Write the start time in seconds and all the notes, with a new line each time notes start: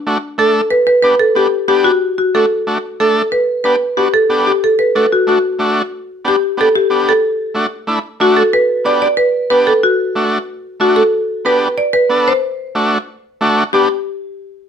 0.06 A3 D4 F#4
0.38 A3 D4 A4
0.71 B4
0.87 B4
1.02 B3 D4 G4 B4
1.19 A4
1.35 B3 D4 G4
1.68 B3 D4 G4
1.84 F#4
2.18 F#4
2.35 A3 D4 F#4 A4
2.67 A3 D4 F#4
3.00 A3 D4 A4
3.32 B4
3.64 B3 D4 G4 B4
3.97 B3 D4 F#4 G4
4.14 A4
4.30 B3 D4 G4
4.47 G4
4.64 A4
4.79 B4
4.95 A3 D4 F#4 A4
5.12 F#4
5.27 A3 D4 F#4
5.59 A3 D4 F#4
6.25 B3 D4 G4
6.57 B3 D4 G4 A4
6.75 G4
6.90 B3 D4 G4
7.09 A4
7.54 A3 D4 F#4
7.87 A3 D4 E4
8.20 A3 D4 F#4
8.37 A4
8.53 B4
8.85 B3 D4 G4 D5
9.02 D5
9.17 B4
9.50 B3 D4 G4 B4
9.67 A4
9.83 F#4
10.16 A3 D4 F#4
10.80 A3 D4 F#4
10.96 A4
11.45 B3 D4 G4 B4
11.78 D5
11.93 B4
12.09 B3 D4 A4
12.28 C5
12.75 A3 D4 F#4
13.41 A3 D4 F#4
13.73 B3 D4 G4